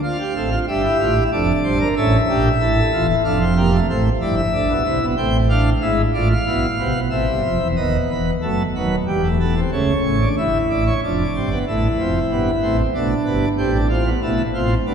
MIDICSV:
0, 0, Header, 1, 2, 480
1, 0, Start_track
1, 0, Key_signature, -1, "minor"
1, 0, Tempo, 643087
1, 23, Time_signature, 3, 2, 24, 8
1, 4343, Tempo, 650759
1, 8663, Tempo, 638298
1, 11120, End_track
2, 0, Start_track
2, 0, Title_t, "Pipe organ"
2, 0, Program_c, 0, 19
2, 19, Note_on_c, 0, 65, 64
2, 22, Note_on_c, 0, 62, 67
2, 22, Note_on_c, 0, 77, 67
2, 125, Note_off_c, 0, 65, 0
2, 145, Note_on_c, 0, 67, 60
2, 172, Note_off_c, 0, 62, 0
2, 249, Note_off_c, 0, 67, 0
2, 264, Note_on_c, 0, 45, 69
2, 265, Note_on_c, 0, 33, 67
2, 265, Note_on_c, 0, 60, 56
2, 265, Note_on_c, 0, 69, 61
2, 370, Note_off_c, 0, 69, 0
2, 384, Note_on_c, 0, 65, 53
2, 415, Note_off_c, 0, 33, 0
2, 415, Note_off_c, 0, 45, 0
2, 415, Note_off_c, 0, 60, 0
2, 439, Note_off_c, 0, 77, 0
2, 489, Note_off_c, 0, 65, 0
2, 504, Note_on_c, 0, 43, 75
2, 506, Note_on_c, 0, 31, 77
2, 507, Note_on_c, 0, 62, 65
2, 507, Note_on_c, 0, 67, 63
2, 507, Note_on_c, 0, 76, 64
2, 611, Note_off_c, 0, 62, 0
2, 624, Note_on_c, 0, 64, 64
2, 655, Note_off_c, 0, 43, 0
2, 656, Note_off_c, 0, 31, 0
2, 730, Note_off_c, 0, 64, 0
2, 745, Note_on_c, 0, 45, 72
2, 746, Note_on_c, 0, 65, 64
2, 747, Note_on_c, 0, 33, 78
2, 851, Note_off_c, 0, 65, 0
2, 867, Note_on_c, 0, 64, 62
2, 895, Note_off_c, 0, 45, 0
2, 897, Note_off_c, 0, 33, 0
2, 922, Note_off_c, 0, 67, 0
2, 923, Note_off_c, 0, 76, 0
2, 972, Note_off_c, 0, 64, 0
2, 986, Note_on_c, 0, 41, 77
2, 986, Note_on_c, 0, 62, 64
2, 986, Note_on_c, 0, 69, 64
2, 987, Note_on_c, 0, 29, 79
2, 987, Note_on_c, 0, 74, 64
2, 1137, Note_off_c, 0, 41, 0
2, 1137, Note_off_c, 0, 69, 0
2, 1138, Note_off_c, 0, 29, 0
2, 1221, Note_on_c, 0, 31, 75
2, 1222, Note_on_c, 0, 43, 75
2, 1223, Note_on_c, 0, 72, 65
2, 1331, Note_off_c, 0, 72, 0
2, 1346, Note_on_c, 0, 70, 67
2, 1374, Note_off_c, 0, 31, 0
2, 1374, Note_off_c, 0, 43, 0
2, 1403, Note_off_c, 0, 62, 0
2, 1404, Note_off_c, 0, 74, 0
2, 1453, Note_off_c, 0, 70, 0
2, 1467, Note_on_c, 0, 33, 81
2, 1467, Note_on_c, 0, 45, 79
2, 1467, Note_on_c, 0, 61, 71
2, 1467, Note_on_c, 0, 76, 69
2, 1468, Note_on_c, 0, 69, 69
2, 1618, Note_off_c, 0, 33, 0
2, 1618, Note_off_c, 0, 45, 0
2, 1618, Note_off_c, 0, 61, 0
2, 1619, Note_off_c, 0, 69, 0
2, 1707, Note_on_c, 0, 34, 70
2, 1708, Note_on_c, 0, 46, 72
2, 1709, Note_on_c, 0, 67, 62
2, 1710, Note_on_c, 0, 62, 58
2, 1857, Note_off_c, 0, 34, 0
2, 1857, Note_off_c, 0, 46, 0
2, 1858, Note_off_c, 0, 67, 0
2, 1859, Note_off_c, 0, 62, 0
2, 1940, Note_on_c, 0, 45, 78
2, 1941, Note_on_c, 0, 33, 79
2, 1941, Note_on_c, 0, 69, 67
2, 1942, Note_on_c, 0, 64, 72
2, 2090, Note_off_c, 0, 45, 0
2, 2091, Note_off_c, 0, 33, 0
2, 2092, Note_off_c, 0, 64, 0
2, 2183, Note_on_c, 0, 28, 76
2, 2183, Note_on_c, 0, 65, 72
2, 2184, Note_on_c, 0, 40, 76
2, 2287, Note_off_c, 0, 65, 0
2, 2289, Note_off_c, 0, 76, 0
2, 2301, Note_on_c, 0, 64, 72
2, 2332, Note_off_c, 0, 28, 0
2, 2333, Note_off_c, 0, 40, 0
2, 2354, Note_off_c, 0, 69, 0
2, 2406, Note_off_c, 0, 64, 0
2, 2420, Note_on_c, 0, 29, 77
2, 2420, Note_on_c, 0, 77, 74
2, 2421, Note_on_c, 0, 62, 74
2, 2422, Note_on_c, 0, 41, 80
2, 2422, Note_on_c, 0, 69, 72
2, 2525, Note_off_c, 0, 62, 0
2, 2541, Note_on_c, 0, 60, 67
2, 2571, Note_off_c, 0, 69, 0
2, 2645, Note_off_c, 0, 60, 0
2, 2660, Note_on_c, 0, 58, 68
2, 2661, Note_on_c, 0, 67, 72
2, 2765, Note_off_c, 0, 58, 0
2, 2779, Note_on_c, 0, 57, 71
2, 2810, Note_off_c, 0, 67, 0
2, 2833, Note_off_c, 0, 29, 0
2, 2833, Note_off_c, 0, 77, 0
2, 2834, Note_off_c, 0, 41, 0
2, 2884, Note_off_c, 0, 57, 0
2, 2904, Note_on_c, 0, 45, 76
2, 2905, Note_on_c, 0, 57, 67
2, 2906, Note_on_c, 0, 33, 76
2, 2907, Note_on_c, 0, 72, 72
2, 3052, Note_off_c, 0, 45, 0
2, 3053, Note_off_c, 0, 57, 0
2, 3054, Note_off_c, 0, 33, 0
2, 3054, Note_off_c, 0, 72, 0
2, 3141, Note_on_c, 0, 64, 82
2, 3142, Note_on_c, 0, 31, 66
2, 3144, Note_on_c, 0, 43, 65
2, 3144, Note_on_c, 0, 74, 69
2, 3246, Note_off_c, 0, 74, 0
2, 3262, Note_on_c, 0, 76, 67
2, 3290, Note_off_c, 0, 64, 0
2, 3291, Note_off_c, 0, 31, 0
2, 3292, Note_off_c, 0, 43, 0
2, 3382, Note_on_c, 0, 33, 75
2, 3382, Note_on_c, 0, 62, 94
2, 3383, Note_on_c, 0, 45, 74
2, 3485, Note_off_c, 0, 33, 0
2, 3486, Note_off_c, 0, 45, 0
2, 3500, Note_on_c, 0, 35, 67
2, 3501, Note_on_c, 0, 47, 71
2, 3531, Note_off_c, 0, 62, 0
2, 3604, Note_off_c, 0, 35, 0
2, 3604, Note_off_c, 0, 47, 0
2, 3619, Note_on_c, 0, 48, 71
2, 3620, Note_on_c, 0, 36, 72
2, 3620, Note_on_c, 0, 64, 90
2, 3723, Note_off_c, 0, 36, 0
2, 3723, Note_off_c, 0, 48, 0
2, 3740, Note_on_c, 0, 35, 70
2, 3740, Note_on_c, 0, 47, 72
2, 3769, Note_off_c, 0, 64, 0
2, 3776, Note_off_c, 0, 76, 0
2, 3843, Note_off_c, 0, 35, 0
2, 3844, Note_off_c, 0, 47, 0
2, 3859, Note_on_c, 0, 45, 73
2, 3860, Note_on_c, 0, 79, 77
2, 3861, Note_on_c, 0, 33, 76
2, 3861, Note_on_c, 0, 60, 90
2, 4009, Note_off_c, 0, 79, 0
2, 4010, Note_off_c, 0, 60, 0
2, 4099, Note_on_c, 0, 77, 70
2, 4102, Note_on_c, 0, 62, 83
2, 4250, Note_off_c, 0, 77, 0
2, 4252, Note_off_c, 0, 62, 0
2, 4274, Note_off_c, 0, 45, 0
2, 4275, Note_off_c, 0, 33, 0
2, 4340, Note_on_c, 0, 76, 76
2, 4341, Note_on_c, 0, 32, 73
2, 4342, Note_on_c, 0, 44, 73
2, 4342, Note_on_c, 0, 64, 88
2, 4490, Note_off_c, 0, 32, 0
2, 4490, Note_off_c, 0, 64, 0
2, 4490, Note_off_c, 0, 76, 0
2, 4491, Note_off_c, 0, 44, 0
2, 4580, Note_on_c, 0, 33, 65
2, 4580, Note_on_c, 0, 45, 70
2, 4581, Note_on_c, 0, 65, 83
2, 4581, Note_on_c, 0, 74, 68
2, 4684, Note_off_c, 0, 74, 0
2, 4696, Note_on_c, 0, 77, 68
2, 4728, Note_off_c, 0, 33, 0
2, 4728, Note_off_c, 0, 45, 0
2, 4729, Note_off_c, 0, 65, 0
2, 4818, Note_on_c, 0, 64, 86
2, 4819, Note_on_c, 0, 35, 66
2, 4820, Note_on_c, 0, 47, 67
2, 4967, Note_off_c, 0, 64, 0
2, 4968, Note_off_c, 0, 35, 0
2, 4968, Note_off_c, 0, 47, 0
2, 5057, Note_on_c, 0, 36, 66
2, 5057, Note_on_c, 0, 59, 84
2, 5058, Note_on_c, 0, 48, 69
2, 5162, Note_off_c, 0, 36, 0
2, 5162, Note_off_c, 0, 48, 0
2, 5173, Note_on_c, 0, 47, 66
2, 5175, Note_on_c, 0, 35, 67
2, 5208, Note_off_c, 0, 59, 0
2, 5214, Note_off_c, 0, 77, 0
2, 5280, Note_off_c, 0, 47, 0
2, 5281, Note_off_c, 0, 35, 0
2, 5291, Note_on_c, 0, 45, 69
2, 5291, Note_on_c, 0, 76, 66
2, 5292, Note_on_c, 0, 33, 65
2, 5293, Note_on_c, 0, 60, 85
2, 5399, Note_off_c, 0, 45, 0
2, 5400, Note_off_c, 0, 33, 0
2, 5416, Note_on_c, 0, 43, 62
2, 5417, Note_on_c, 0, 31, 64
2, 5523, Note_off_c, 0, 43, 0
2, 5524, Note_off_c, 0, 31, 0
2, 5535, Note_on_c, 0, 29, 61
2, 5535, Note_on_c, 0, 41, 62
2, 5643, Note_off_c, 0, 29, 0
2, 5643, Note_off_c, 0, 41, 0
2, 5656, Note_on_c, 0, 40, 61
2, 5657, Note_on_c, 0, 28, 63
2, 5713, Note_off_c, 0, 76, 0
2, 5714, Note_off_c, 0, 60, 0
2, 5765, Note_off_c, 0, 28, 0
2, 5765, Note_off_c, 0, 40, 0
2, 5774, Note_on_c, 0, 59, 60
2, 5775, Note_on_c, 0, 27, 61
2, 5775, Note_on_c, 0, 39, 59
2, 5777, Note_on_c, 0, 75, 73
2, 5929, Note_off_c, 0, 27, 0
2, 5929, Note_off_c, 0, 39, 0
2, 5930, Note_off_c, 0, 75, 0
2, 6025, Note_on_c, 0, 28, 56
2, 6027, Note_on_c, 0, 40, 51
2, 6027, Note_on_c, 0, 71, 60
2, 6175, Note_off_c, 0, 28, 0
2, 6177, Note_off_c, 0, 40, 0
2, 6177, Note_off_c, 0, 71, 0
2, 6195, Note_off_c, 0, 59, 0
2, 6261, Note_on_c, 0, 57, 58
2, 6261, Note_on_c, 0, 69, 67
2, 6262, Note_on_c, 0, 30, 58
2, 6263, Note_on_c, 0, 42, 58
2, 6413, Note_off_c, 0, 30, 0
2, 6413, Note_off_c, 0, 57, 0
2, 6413, Note_off_c, 0, 69, 0
2, 6414, Note_off_c, 0, 42, 0
2, 6505, Note_on_c, 0, 54, 59
2, 6505, Note_on_c, 0, 71, 65
2, 6506, Note_on_c, 0, 27, 55
2, 6506, Note_on_c, 0, 39, 56
2, 6656, Note_off_c, 0, 27, 0
2, 6656, Note_off_c, 0, 39, 0
2, 6656, Note_off_c, 0, 54, 0
2, 6656, Note_off_c, 0, 71, 0
2, 6741, Note_on_c, 0, 28, 58
2, 6742, Note_on_c, 0, 55, 57
2, 6742, Note_on_c, 0, 67, 65
2, 6744, Note_on_c, 0, 40, 63
2, 6849, Note_off_c, 0, 55, 0
2, 6862, Note_on_c, 0, 57, 56
2, 6894, Note_off_c, 0, 67, 0
2, 6970, Note_off_c, 0, 57, 0
2, 6980, Note_on_c, 0, 69, 62
2, 6983, Note_on_c, 0, 59, 61
2, 7090, Note_off_c, 0, 59, 0
2, 7103, Note_on_c, 0, 60, 63
2, 7132, Note_off_c, 0, 69, 0
2, 7158, Note_off_c, 0, 28, 0
2, 7160, Note_off_c, 0, 40, 0
2, 7210, Note_off_c, 0, 60, 0
2, 7220, Note_on_c, 0, 49, 74
2, 7221, Note_on_c, 0, 37, 70
2, 7221, Note_on_c, 0, 57, 64
2, 7222, Note_on_c, 0, 73, 65
2, 7372, Note_off_c, 0, 49, 0
2, 7372, Note_off_c, 0, 57, 0
2, 7373, Note_off_c, 0, 37, 0
2, 7461, Note_on_c, 0, 33, 63
2, 7461, Note_on_c, 0, 61, 59
2, 7462, Note_on_c, 0, 45, 65
2, 7568, Note_off_c, 0, 61, 0
2, 7584, Note_on_c, 0, 62, 59
2, 7612, Note_off_c, 0, 33, 0
2, 7613, Note_off_c, 0, 45, 0
2, 7637, Note_off_c, 0, 73, 0
2, 7689, Note_off_c, 0, 62, 0
2, 7704, Note_on_c, 0, 31, 67
2, 7704, Note_on_c, 0, 43, 70
2, 7704, Note_on_c, 0, 64, 61
2, 7704, Note_on_c, 0, 76, 62
2, 7854, Note_off_c, 0, 31, 0
2, 7854, Note_off_c, 0, 43, 0
2, 7854, Note_off_c, 0, 76, 0
2, 7943, Note_on_c, 0, 74, 62
2, 7945, Note_on_c, 0, 33, 67
2, 7945, Note_on_c, 0, 45, 71
2, 8048, Note_off_c, 0, 74, 0
2, 8064, Note_on_c, 0, 73, 60
2, 8093, Note_off_c, 0, 33, 0
2, 8093, Note_off_c, 0, 45, 0
2, 8116, Note_off_c, 0, 64, 0
2, 8168, Note_off_c, 0, 73, 0
2, 8188, Note_on_c, 0, 41, 71
2, 8189, Note_on_c, 0, 62, 63
2, 8189, Note_on_c, 0, 74, 63
2, 8190, Note_on_c, 0, 29, 74
2, 8335, Note_off_c, 0, 41, 0
2, 8335, Note_off_c, 0, 62, 0
2, 8336, Note_off_c, 0, 29, 0
2, 8424, Note_on_c, 0, 31, 70
2, 8425, Note_on_c, 0, 43, 67
2, 8426, Note_on_c, 0, 60, 62
2, 8528, Note_off_c, 0, 60, 0
2, 8539, Note_on_c, 0, 59, 67
2, 8572, Note_off_c, 0, 31, 0
2, 8572, Note_off_c, 0, 43, 0
2, 8597, Note_off_c, 0, 74, 0
2, 8643, Note_off_c, 0, 59, 0
2, 8661, Note_on_c, 0, 33, 67
2, 8662, Note_on_c, 0, 64, 67
2, 8663, Note_on_c, 0, 45, 67
2, 8663, Note_on_c, 0, 57, 76
2, 8811, Note_off_c, 0, 33, 0
2, 8812, Note_off_c, 0, 57, 0
2, 8813, Note_off_c, 0, 45, 0
2, 8900, Note_on_c, 0, 29, 63
2, 8900, Note_on_c, 0, 41, 59
2, 8901, Note_on_c, 0, 60, 70
2, 9050, Note_off_c, 0, 29, 0
2, 9050, Note_off_c, 0, 41, 0
2, 9050, Note_off_c, 0, 60, 0
2, 9139, Note_on_c, 0, 43, 64
2, 9139, Note_on_c, 0, 59, 79
2, 9140, Note_on_c, 0, 31, 64
2, 9287, Note_off_c, 0, 43, 0
2, 9288, Note_off_c, 0, 31, 0
2, 9288, Note_off_c, 0, 59, 0
2, 9377, Note_on_c, 0, 45, 68
2, 9377, Note_on_c, 0, 60, 81
2, 9379, Note_on_c, 0, 33, 65
2, 9484, Note_off_c, 0, 64, 0
2, 9525, Note_off_c, 0, 45, 0
2, 9525, Note_off_c, 0, 60, 0
2, 9527, Note_off_c, 0, 33, 0
2, 9615, Note_on_c, 0, 57, 78
2, 9616, Note_on_c, 0, 62, 69
2, 9617, Note_on_c, 0, 35, 75
2, 9617, Note_on_c, 0, 47, 71
2, 9763, Note_off_c, 0, 57, 0
2, 9764, Note_off_c, 0, 35, 0
2, 9764, Note_off_c, 0, 47, 0
2, 9850, Note_on_c, 0, 31, 67
2, 9851, Note_on_c, 0, 59, 76
2, 9853, Note_on_c, 0, 43, 66
2, 9999, Note_off_c, 0, 31, 0
2, 9999, Note_off_c, 0, 59, 0
2, 10001, Note_off_c, 0, 43, 0
2, 10025, Note_off_c, 0, 62, 0
2, 10091, Note_on_c, 0, 67, 92
2, 10093, Note_on_c, 0, 33, 75
2, 10093, Note_on_c, 0, 45, 79
2, 10093, Note_on_c, 0, 60, 72
2, 10196, Note_off_c, 0, 60, 0
2, 10212, Note_on_c, 0, 62, 72
2, 10241, Note_off_c, 0, 67, 0
2, 10316, Note_off_c, 0, 62, 0
2, 10332, Note_on_c, 0, 60, 68
2, 10332, Note_on_c, 0, 65, 76
2, 10436, Note_off_c, 0, 60, 0
2, 10456, Note_on_c, 0, 59, 68
2, 10482, Note_off_c, 0, 65, 0
2, 10507, Note_off_c, 0, 33, 0
2, 10507, Note_off_c, 0, 45, 0
2, 10559, Note_off_c, 0, 59, 0
2, 10576, Note_on_c, 0, 47, 70
2, 10577, Note_on_c, 0, 35, 74
2, 10578, Note_on_c, 0, 57, 74
2, 10578, Note_on_c, 0, 64, 84
2, 10726, Note_off_c, 0, 35, 0
2, 10726, Note_off_c, 0, 47, 0
2, 10727, Note_off_c, 0, 57, 0
2, 10727, Note_off_c, 0, 64, 0
2, 10816, Note_on_c, 0, 33, 74
2, 10817, Note_on_c, 0, 45, 70
2, 10818, Note_on_c, 0, 65, 80
2, 10819, Note_on_c, 0, 60, 75
2, 10968, Note_off_c, 0, 33, 0
2, 10968, Note_off_c, 0, 45, 0
2, 10969, Note_off_c, 0, 60, 0
2, 10969, Note_off_c, 0, 65, 0
2, 11058, Note_on_c, 0, 31, 76
2, 11059, Note_on_c, 0, 43, 70
2, 11059, Note_on_c, 0, 59, 75
2, 11060, Note_on_c, 0, 62, 84
2, 11120, Note_off_c, 0, 31, 0
2, 11120, Note_off_c, 0, 43, 0
2, 11120, Note_off_c, 0, 59, 0
2, 11120, Note_off_c, 0, 62, 0
2, 11120, End_track
0, 0, End_of_file